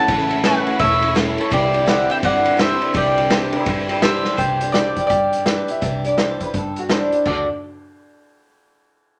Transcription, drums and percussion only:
0.08 kick, ride
0.31 ride
0.44 snare, ride
0.67 ride
0.79 kick, ride
1.02 ride
1.16 snare, ride
1.38 ride
1.52 kick, ride
1.74 ride
1.88 snare, ride
2.10 ride
2.23 kick, ride
2.45 ride
2.59 snare, ride
2.82 ride
2.94 kick, ride
3.18 ride
3.30 snare, ride
3.53 ride
3.66 kick, ride
3.89 ride
4.02 snare, ride
4.25 snare
4.38 kick, closed hi-hat
4.61 closed hi-hat
4.74 snare, closed hi-hat
4.96 kick, closed hi-hat
5.10 kick, closed hi-hat
5.33 closed hi-hat
5.46 snare, closed hi-hat
5.68 closed hi-hat
5.82 kick, closed hi-hat
6.05 closed hi-hat
6.18 snare, closed hi-hat
6.41 kick, closed hi-hat
6.54 kick, closed hi-hat
6.76 closed hi-hat
6.89 snare, closed hi-hat
7.12 closed hi-hat
7.25 kick, crash

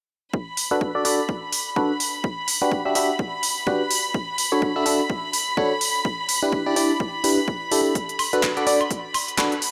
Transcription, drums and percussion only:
0.34 kick
0.57 open hi-hat
0.81 kick
1.05 open hi-hat
1.29 kick
1.52 open hi-hat
1.76 kick
2.00 open hi-hat
2.24 kick
2.48 open hi-hat
2.72 kick
2.95 open hi-hat
3.19 kick
3.43 open hi-hat
3.67 kick
3.91 open hi-hat
4.14 kick
4.38 open hi-hat
4.62 kick
4.86 open hi-hat
5.10 kick
5.33 open hi-hat
5.57 kick
5.81 open hi-hat
6.05 kick
6.29 open hi-hat
6.52 kick
6.76 open hi-hat
7.00 kick
7.24 open hi-hat
7.48 kick
7.72 open hi-hat
7.95 kick, closed hi-hat
8.09 closed hi-hat
8.19 open hi-hat, high woodblock
8.33 closed hi-hat
8.43 kick, clap, closed hi-hat
8.57 closed hi-hat
8.67 open hi-hat
8.81 closed hi-hat, high woodblock
8.91 kick, closed hi-hat
9.14 open hi-hat, high woodblock
9.28 closed hi-hat
9.38 kick, clap, closed hi-hat
9.52 closed hi-hat
9.62 open hi-hat

